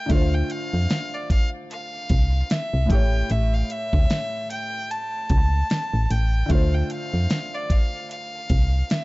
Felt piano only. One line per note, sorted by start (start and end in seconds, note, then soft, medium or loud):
0.06 2.84 D3 medium
0.06 2.85 A3 medium
0.12 2.87 F4 medium
0.12 2.88 C5 medium
2.86 6.04 A2 medium
2.86 6.05 A3 medium
2.92 6.07 G4 medium
2.92 6.08 C#5 medium
6.46 9.04 D3 medium
6.46 9.04 A3 medium
6.52 9.04 F4 medium
6.52 9.04 C5 medium